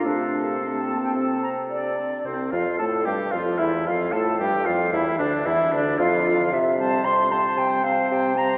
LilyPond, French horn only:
\new Staff \with { instrumentName = "French horn" } { \clef bass \time 4/4 \key f \major \tempo 4 = 112 a4 a8 bes8 c'4. r8 | c8 f8 a8 g8 f8 e8 f8 a8 | g8 f8 e8 d8 e8 d8 f4 | r8 g4 g4 g4 g8 | }